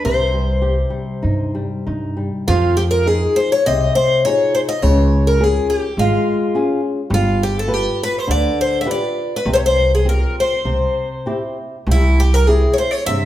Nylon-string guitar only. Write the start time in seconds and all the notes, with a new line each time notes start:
0.05 C3
0.34 G3
0.62 G4
0.90 G3
1.22 D#4
1.55 G3
1.87 D#4
2.17 G3
2.47 F3
3.06 D#4 F4 G#4
3.67 C3
4.25 D#4 F4 G#4
4.83 C#3
5.40 C#4 F4 G#4
5.99 G#3
6.55 C#4 F4 G#4
7.10 G3
7.68 F4 G4 B4
8.27 D3
8.85 F4 G4 B4
9.46 C3
10.05 C4 F4 G4
10.65 C3
11.26 C4 E4 G4
11.88 G3
12.48 C4 E4 G4
13.08 C3